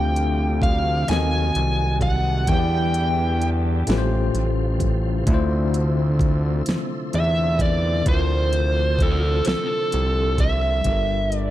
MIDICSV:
0, 0, Header, 1, 6, 480
1, 0, Start_track
1, 0, Tempo, 930233
1, 1280, Time_signature, 6, 3, 24, 8
1, 5937, End_track
2, 0, Start_track
2, 0, Title_t, "Lead electric guitar"
2, 0, Program_c, 0, 29
2, 0, Note_on_c, 0, 79, 108
2, 323, Note_off_c, 0, 79, 0
2, 325, Note_on_c, 0, 77, 96
2, 546, Note_off_c, 0, 77, 0
2, 564, Note_on_c, 0, 80, 99
2, 1021, Note_off_c, 0, 80, 0
2, 1045, Note_on_c, 0, 78, 92
2, 1284, Note_off_c, 0, 78, 0
2, 1286, Note_on_c, 0, 79, 102
2, 1803, Note_off_c, 0, 79, 0
2, 3691, Note_on_c, 0, 76, 93
2, 3909, Note_off_c, 0, 76, 0
2, 3929, Note_on_c, 0, 74, 90
2, 4148, Note_off_c, 0, 74, 0
2, 4171, Note_on_c, 0, 72, 85
2, 4656, Note_on_c, 0, 69, 84
2, 4872, Note_off_c, 0, 69, 0
2, 4894, Note_on_c, 0, 69, 83
2, 5105, Note_off_c, 0, 72, 0
2, 5368, Note_on_c, 0, 76, 97
2, 5381, Note_off_c, 0, 69, 0
2, 5863, Note_off_c, 0, 76, 0
2, 5863, Note_on_c, 0, 74, 97
2, 5937, Note_off_c, 0, 74, 0
2, 5937, End_track
3, 0, Start_track
3, 0, Title_t, "Tine electric piano"
3, 0, Program_c, 1, 4
3, 0, Control_c, 1, 64, 127
3, 0, Note_on_c, 1, 50, 59
3, 0, Note_on_c, 1, 57, 52
3, 0, Note_on_c, 1, 60, 58
3, 0, Note_on_c, 1, 65, 58
3, 0, Note_on_c, 1, 67, 54
3, 0, Note_on_c, 1, 77, 64
3, 554, Note_on_c, 1, 51, 70
3, 555, Note_off_c, 1, 60, 0
3, 556, Note_off_c, 1, 50, 0
3, 559, Note_off_c, 1, 57, 0
3, 561, Note_on_c, 1, 60, 61
3, 564, Note_off_c, 1, 65, 0
3, 566, Note_on_c, 1, 66, 64
3, 567, Note_off_c, 1, 67, 0
3, 567, Control_c, 1, 64, 0
3, 569, Note_off_c, 1, 77, 0
3, 573, Note_on_c, 1, 69, 62
3, 580, Note_on_c, 1, 75, 72
3, 654, Control_c, 1, 64, 127
3, 1277, Note_off_c, 1, 51, 0
3, 1278, Note_on_c, 1, 52, 60
3, 1281, Note_off_c, 1, 60, 0
3, 1283, Note_off_c, 1, 66, 0
3, 1285, Note_on_c, 1, 59, 55
3, 1287, Note_off_c, 1, 69, 0
3, 1288, Control_c, 1, 64, 0
3, 1289, Note_on_c, 1, 64, 55
3, 1290, Note_off_c, 1, 75, 0
3, 1297, Note_on_c, 1, 67, 62
3, 1301, Note_on_c, 1, 73, 56
3, 1324, Note_off_c, 1, 73, 0
3, 1337, Note_on_c, 1, 74, 69
3, 1392, Control_c, 1, 64, 127
3, 1995, Note_on_c, 1, 45, 84
3, 1999, Note_off_c, 1, 52, 0
3, 1999, Note_on_c, 1, 57, 77
3, 2002, Note_off_c, 1, 59, 0
3, 2005, Note_off_c, 1, 64, 0
3, 2007, Control_c, 1, 64, 0
3, 2007, Note_on_c, 1, 61, 73
3, 2008, Note_off_c, 1, 67, 0
3, 2009, Note_on_c, 1, 65, 70
3, 2015, Note_on_c, 1, 67, 69
3, 2021, Note_on_c, 1, 71, 70
3, 2029, Note_off_c, 1, 74, 0
3, 2044, Note_off_c, 1, 71, 0
3, 2054, Note_on_c, 1, 72, 91
3, 2110, Control_c, 1, 64, 127
3, 2701, Note_on_c, 1, 50, 69
3, 2710, Note_off_c, 1, 57, 0
3, 2716, Note_on_c, 1, 57, 69
3, 2718, Note_off_c, 1, 45, 0
3, 2723, Note_off_c, 1, 61, 0
3, 2724, Note_off_c, 1, 65, 0
3, 2726, Control_c, 1, 64, 0
3, 2728, Note_off_c, 1, 67, 0
3, 2729, Note_on_c, 1, 64, 74
3, 2741, Note_on_c, 1, 65, 72
3, 2747, Note_off_c, 1, 72, 0
3, 2755, Note_on_c, 1, 72, 79
3, 2822, Control_c, 1, 64, 127
3, 4130, Note_off_c, 1, 50, 0
3, 4137, Note_off_c, 1, 57, 0
3, 4138, Note_on_c, 1, 50, 62
3, 4144, Note_off_c, 1, 64, 0
3, 4150, Note_off_c, 1, 65, 0
3, 4153, Note_on_c, 1, 57, 57
3, 4157, Note_off_c, 1, 72, 0
3, 4163, Note_on_c, 1, 64, 59
3, 4176, Note_on_c, 1, 65, 56
3, 4189, Note_on_c, 1, 70, 54
3, 4208, Note_off_c, 1, 70, 0
3, 4224, Note_on_c, 1, 72, 66
3, 5569, Note_off_c, 1, 50, 0
3, 5576, Note_off_c, 1, 57, 0
3, 5580, Note_on_c, 1, 55, 51
3, 5581, Note_off_c, 1, 64, 0
3, 5587, Note_off_c, 1, 65, 0
3, 5592, Note_on_c, 1, 62, 51
3, 5605, Note_on_c, 1, 65, 45
3, 5607, Control_c, 1, 64, 0
3, 5611, Note_off_c, 1, 72, 0
3, 5617, Note_on_c, 1, 69, 49
3, 5629, Note_on_c, 1, 70, 57
3, 5698, Control_c, 1, 64, 127
3, 5937, Note_off_c, 1, 55, 0
3, 5937, Note_off_c, 1, 62, 0
3, 5937, Note_off_c, 1, 65, 0
3, 5937, Note_off_c, 1, 69, 0
3, 5937, Note_off_c, 1, 70, 0
3, 5937, End_track
4, 0, Start_track
4, 0, Title_t, "Tonewheel organ"
4, 0, Program_c, 2, 16
4, 0, Note_on_c, 2, 48, 62
4, 0, Note_on_c, 2, 50, 59
4, 0, Note_on_c, 2, 53, 70
4, 0, Note_on_c, 2, 55, 58
4, 0, Note_on_c, 2, 62, 58
4, 547, Note_off_c, 2, 53, 0
4, 551, Note_off_c, 2, 48, 0
4, 551, Note_off_c, 2, 50, 0
4, 551, Note_off_c, 2, 55, 0
4, 551, Note_off_c, 2, 62, 0
4, 565, Note_on_c, 2, 69, 71
4, 566, Note_on_c, 2, 54, 62
4, 566, Note_on_c, 2, 57, 60
4, 566, Note_on_c, 2, 63, 56
4, 568, Note_on_c, 2, 48, 64
4, 1276, Note_off_c, 2, 54, 0
4, 1276, Note_off_c, 2, 57, 0
4, 1276, Note_off_c, 2, 63, 0
4, 1277, Note_off_c, 2, 48, 0
4, 1284, Note_on_c, 2, 50, 66
4, 1284, Note_on_c, 2, 55, 56
4, 1287, Note_on_c, 2, 59, 63
4, 1287, Note_on_c, 2, 64, 65
4, 1988, Note_off_c, 2, 69, 0
4, 1995, Note_off_c, 2, 50, 0
4, 1996, Note_off_c, 2, 59, 0
4, 1996, Note_off_c, 2, 64, 0
4, 1998, Note_on_c, 2, 72, 61
4, 1999, Note_on_c, 2, 49, 61
4, 1999, Note_on_c, 2, 57, 64
4, 2000, Note_on_c, 2, 65, 77
4, 2708, Note_off_c, 2, 55, 0
4, 2712, Note_off_c, 2, 49, 0
4, 2713, Note_off_c, 2, 65, 0
4, 2721, Note_on_c, 2, 76, 74
4, 2722, Note_on_c, 2, 48, 64
4, 2724, Note_on_c, 2, 50, 69
4, 4146, Note_off_c, 2, 76, 0
4, 4162, Note_on_c, 2, 53, 67
4, 5579, Note_off_c, 2, 57, 0
4, 5579, Note_off_c, 2, 72, 0
4, 5581, Note_off_c, 2, 48, 0
4, 5581, Note_off_c, 2, 50, 0
4, 5587, Note_off_c, 2, 53, 0
4, 5937, End_track
5, 0, Start_track
5, 0, Title_t, "Analog synth bass"
5, 0, Program_c, 3, 38
5, 0, Note_on_c, 3, 38, 107
5, 540, Note_off_c, 3, 38, 0
5, 564, Note_on_c, 3, 39, 94
5, 782, Note_off_c, 3, 39, 0
5, 804, Note_on_c, 3, 36, 81
5, 1279, Note_on_c, 3, 40, 109
5, 1287, Note_off_c, 3, 36, 0
5, 1979, Note_off_c, 3, 40, 0
5, 2005, Note_on_c, 3, 33, 93
5, 2222, Note_off_c, 3, 33, 0
5, 2243, Note_on_c, 3, 33, 75
5, 2701, Note_off_c, 3, 33, 0
5, 2720, Note_on_c, 3, 38, 104
5, 3419, Note_off_c, 3, 38, 0
5, 3444, Note_on_c, 3, 40, 42
5, 3491, Note_off_c, 3, 40, 0
5, 3684, Note_on_c, 3, 40, 83
5, 4141, Note_off_c, 3, 40, 0
5, 4162, Note_on_c, 3, 38, 98
5, 4860, Note_off_c, 3, 38, 0
5, 4886, Note_on_c, 3, 36, 41
5, 4933, Note_off_c, 3, 36, 0
5, 5127, Note_on_c, 3, 36, 84
5, 5583, Note_off_c, 3, 36, 0
5, 5603, Note_on_c, 3, 31, 99
5, 5937, Note_off_c, 3, 31, 0
5, 5937, End_track
6, 0, Start_track
6, 0, Title_t, "Drums"
6, 84, Note_on_c, 9, 42, 49
6, 136, Note_off_c, 9, 42, 0
6, 318, Note_on_c, 9, 36, 106
6, 326, Note_on_c, 9, 42, 43
6, 370, Note_off_c, 9, 36, 0
6, 378, Note_off_c, 9, 42, 0
6, 559, Note_on_c, 9, 42, 66
6, 573, Note_on_c, 9, 38, 113
6, 610, Note_off_c, 9, 42, 0
6, 625, Note_off_c, 9, 38, 0
6, 800, Note_on_c, 9, 42, 50
6, 852, Note_off_c, 9, 42, 0
6, 1036, Note_on_c, 9, 36, 81
6, 1038, Note_on_c, 9, 42, 52
6, 1088, Note_off_c, 9, 36, 0
6, 1089, Note_off_c, 9, 42, 0
6, 1276, Note_on_c, 9, 42, 73
6, 1278, Note_on_c, 9, 36, 94
6, 1328, Note_off_c, 9, 42, 0
6, 1330, Note_off_c, 9, 36, 0
6, 1518, Note_on_c, 9, 42, 52
6, 1570, Note_off_c, 9, 42, 0
6, 1762, Note_on_c, 9, 42, 46
6, 1814, Note_off_c, 9, 42, 0
6, 1997, Note_on_c, 9, 42, 63
6, 2011, Note_on_c, 9, 38, 112
6, 2048, Note_off_c, 9, 42, 0
6, 2063, Note_off_c, 9, 38, 0
6, 2243, Note_on_c, 9, 42, 48
6, 2294, Note_off_c, 9, 42, 0
6, 2477, Note_on_c, 9, 36, 85
6, 2478, Note_on_c, 9, 42, 56
6, 2529, Note_off_c, 9, 36, 0
6, 2530, Note_off_c, 9, 42, 0
6, 2718, Note_on_c, 9, 42, 78
6, 2719, Note_on_c, 9, 36, 107
6, 2770, Note_off_c, 9, 36, 0
6, 2770, Note_off_c, 9, 42, 0
6, 2962, Note_on_c, 9, 42, 51
6, 3014, Note_off_c, 9, 42, 0
6, 3196, Note_on_c, 9, 36, 102
6, 3202, Note_on_c, 9, 42, 45
6, 3248, Note_off_c, 9, 36, 0
6, 3254, Note_off_c, 9, 42, 0
6, 3436, Note_on_c, 9, 42, 60
6, 3451, Note_on_c, 9, 38, 112
6, 3488, Note_off_c, 9, 42, 0
6, 3502, Note_off_c, 9, 38, 0
6, 3680, Note_on_c, 9, 42, 47
6, 3732, Note_off_c, 9, 42, 0
6, 3917, Note_on_c, 9, 36, 90
6, 3920, Note_on_c, 9, 42, 57
6, 3969, Note_off_c, 9, 36, 0
6, 3972, Note_off_c, 9, 42, 0
6, 4159, Note_on_c, 9, 36, 100
6, 4159, Note_on_c, 9, 42, 73
6, 4210, Note_off_c, 9, 42, 0
6, 4211, Note_off_c, 9, 36, 0
6, 4400, Note_on_c, 9, 42, 48
6, 4451, Note_off_c, 9, 42, 0
6, 4638, Note_on_c, 9, 36, 96
6, 4646, Note_on_c, 9, 42, 45
6, 4689, Note_off_c, 9, 36, 0
6, 4697, Note_off_c, 9, 42, 0
6, 4875, Note_on_c, 9, 42, 62
6, 4889, Note_on_c, 9, 38, 101
6, 4926, Note_off_c, 9, 42, 0
6, 4941, Note_off_c, 9, 38, 0
6, 5120, Note_on_c, 9, 42, 48
6, 5172, Note_off_c, 9, 42, 0
6, 5357, Note_on_c, 9, 36, 87
6, 5358, Note_on_c, 9, 42, 56
6, 5409, Note_off_c, 9, 36, 0
6, 5409, Note_off_c, 9, 42, 0
6, 5595, Note_on_c, 9, 42, 65
6, 5599, Note_on_c, 9, 36, 80
6, 5647, Note_off_c, 9, 42, 0
6, 5650, Note_off_c, 9, 36, 0
6, 5841, Note_on_c, 9, 42, 47
6, 5892, Note_off_c, 9, 42, 0
6, 5937, End_track
0, 0, End_of_file